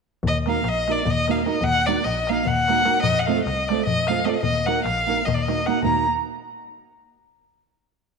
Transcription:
0.23 double bass D#2, darbuka dum
0.27 violin D#5
0.46 nylon-string guitar A#3 D#4 F#4 A#4, violin F5, darbuka tek
0.63 double bass A#1, darbuka tek
0.68 violin D#5
0.88 nylon-string guitar A#3 D#4 F#4 A#4, violin D5, darbuka tek
0.96 darbuka tek
1.06 double bass D#2, darbuka dum
1.10 violin D#5
1.28 nylon-string guitar A#3 D#4 F#4 A#4, violin F5, darbuka tek
1.46 nylon-string guitar A#3 D#4 F#4 A#4, violin D#5, darbuka tek
1.55 darbuka tek
1.61 double bass D#2, violin F#5, darbuka dum
1.86 nylon-string guitar A#3 D#4 F#4 A#4, violin D5, darbuka tek
2.04 double bass A#1, violin D#5, darbuka tek
2.27 nylon-string guitar A#3 D#4 F#4, violin F5, darbuka tek
2.31 nylon-string guitar A#4
2.37 darbuka tek
2.46 double bass D#2, violin F#5, darbuka dum
2.68 nylon-string guitar A#3 D#4 F#4 A#4, darbuka tek
2.85 nylon-string guitar A#3 D#4 F#4 A#4, darbuka tek
2.95 darbuka tek
3.02 double bass F2, violin D#5, darbuka dum
3.19 violin F#5
3.25 nylon-string guitar A3 C4 F4, violin F5, darbuka tek
3.30 nylon-string guitar A4
3.45 double bass C2, violin D#5, darbuka tek
3.68 nylon-string guitar A3 C4 F4, violin D5, darbuka tek
3.72 nylon-string guitar A4
3.86 double bass F2, violin D#5, darbuka dum
4.07 nylon-string guitar A3 C4 F4 A4, violin F5, darbuka tek
4.24 nylon-string guitar A3 C4 F4 A4, violin D#5, darbuka tek
4.29 violin D5
4.34 violin D#5, darbuka tek
4.43 double bass D#2, violin D#5, darbuka dum
4.55 darbuka tek
4.66 nylon-string guitar A#3 D#4 F#4 A#4, violin F#5, darbuka tek
4.84 double bass A#1, violin F5, darbuka tek
4.98 darbuka tek
5.07 nylon-string guitar A#3 D#4 F#4 A#4, darbuka tek
5.25 double bass D#2, violin D#5, darbuka dum
5.34 violin D5, darbuka tek
5.42 violin D#5
5.48 nylon-string guitar A#3 D#4 F#4 A#4, darbuka tek
5.66 nylon-string guitar A#3 D#4 F#4 A#4, violin F#5, darbuka tek
5.75 darbuka tek
5.82 double bass D#2, nylon-string guitar A#3 D#4 F#4 A#4, violin A#5, darbuka dum

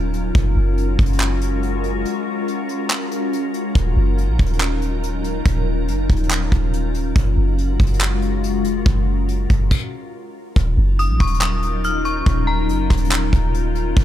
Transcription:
Already playing: 808-style bass D#1, ambient pad F#3 C#4 D#4 F4 A#4
0.14 closed hi-hat
0.35 808-style bass F#1, ambient pad G#3 C#4 F#4, kick, closed hi-hat
0.56 808-style bass F#1
0.78 closed hi-hat
0.99 808-style bass F#1, kick, closed hi-hat
1.06 closed hi-hat
1.13 closed hi-hat
1.20 clap
1.41 closed hi-hat
1.63 closed hi-hat
1.84 closed hi-hat
2.05 closed hi-hat
2.48 closed hi-hat
2.69 closed hi-hat
2.90 clap
3.12 closed hi-hat
3.33 closed hi-hat
3.54 closed hi-hat
3.75 808-style bass D#1, ambient pad F#3 D#4 A#4, kick, closed hi-hat
3.97 808-style bass F#1
4.18 closed hi-hat
4.29 808-style bass A#1
4.39 808-style bass D#1, kick, closed hi-hat
4.46 closed hi-hat
4.53 closed hi-hat
4.61 clap
4.82 closed hi-hat
5.03 closed hi-hat
5.24 closed hi-hat
5.46 808-style bass D#1, kick, closed hi-hat
5.88 808-style bass F#1, closed hi-hat
6.09 808-style bass D#1, kick, closed hi-hat
6.16 closed hi-hat
6.24 closed hi-hat
6.31 clap
6.52 808-style bass D#1, kick, closed hi-hat
6.73 closed hi-hat
6.94 closed hi-hat
7.16 808-style bass F#1, ambient pad G#3 F4 F#4, kick, closed hi-hat
7.37 808-style bass F#1
7.58 closed hi-hat
7.80 808-style bass F#1, kick, closed hi-hat
7.87 closed hi-hat
7.94 closed hi-hat
8.01 clap
8.22 closed hi-hat
8.44 closed hi-hat
8.64 808-style bass F1, closed hi-hat
8.86 808-style bass F#1, kick, closed hi-hat
9.29 closed hi-hat
9.50 808-style bass F#1, kick, closed hi-hat
9.71 kick, crash
10.56 808-style bass D#1, ambient pad F#3 C#4 D#4 F4 A#4, kick, closed hi-hat
10.78 808-style bass F#1
10.99 synth bell D#6, closed hi-hat
11.10 808-style bass A#1
11.20 808-style bass D#1, synth bell C#6, kick, closed hi-hat
11.27 closed hi-hat
11.34 closed hi-hat
11.41 synth bell D#6, clap
11.63 closed hi-hat
11.84 synth bell F6, closed hi-hat
12.05 synth bell C#6, closed hi-hat
12.26 808-style bass D#1, kick, closed hi-hat
12.47 synth bell A#5
12.69 808-style bass F#1, closed hi-hat
12.90 808-style bass D#1, kick, cross-stick, closed hi-hat
12.97 closed hi-hat
13.04 closed hi-hat
13.12 clap
13.33 808-style bass D#1, kick, closed hi-hat
13.54 closed hi-hat
13.75 closed hi-hat
13.97 808-style bass F#1, kick, closed hi-hat

